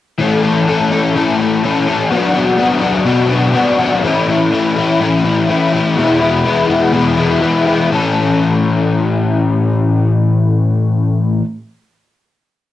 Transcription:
overdriven electric guitar
0.18 A2 E3 A3 C#4 A4
0.43 A3 C#4 A4
0.67 E3 A3 C#4 A4
0.92 A3 C#4 A4
1.15 A2 E3 A3 C#4 A4
1.38 A3 C#4 A4
1.63 E3 A3 C#4 A4
1.87 A3 C#4 A4
2.10 B2 F#3 B3 D4 F#4
2.33 B3 D4 F#4
2.57 F#3 B3 D4 F#4
2.81 B3 D4 F#4
3.04 B2 F#3 B3 D4 F#4
3.28 B3 D4 F#4
3.53 F#3 B3 D4 F#4
3.79 B3 D4 F#4
4.03 A2 E3 A3 C#4 E4
4.27 A3 C#4 E4
4.51 E3 A3 C#4 E4
4.76 A3 C#4 E4
5.00 A2 E3 A3 C#4 E4
5.24 A3 C#4 E4
5.49 E3 A3 C#4 E4
5.73 A3 C#4 E4
5.97 E2 B2 E3 G#3 B3 E4
6.20 E3 G#3 B3 E4
6.44 E3 G#3 B3 E4
6.68 E3 G#3 B3 E4
6.93 E2 B2 E3 G#3 B3 E4
7.17 E3 G#3 B3 E4
7.40 E3 G#3 B3 E4
7.65 E3 G#3 B3 E4
7.90 A2 E3 A3 C#4
7.94 A4

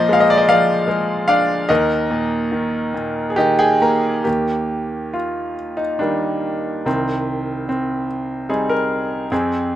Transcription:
grand piano
Already playing: A#2 F3 A#4 C5 D5 D#5
0.09 G#3 F5
0.20 D#5
0.30 D5
0.38 D#5
0.48 F3 D5 F5
0.88 G#3
1.28 D4 D5 F5
1.69 D#2 A#4 D#5
2.11 A#2
2.52 D#3
2.94 A#2
3.30 G#4
3.36 D#3 G4 D#5
3.59 G#4 G5
3.82 A#3 A#5
4.24 D#2 A#3 G4
5.13 F4
5.77 D#4
5.99 D#3 G3 A#3 D4
6.86 C2 D#3 C4
7.69 C4
8.49 G3 C4 D#4 G#4
8.69 A#4
9.31 F2 C4 G#4

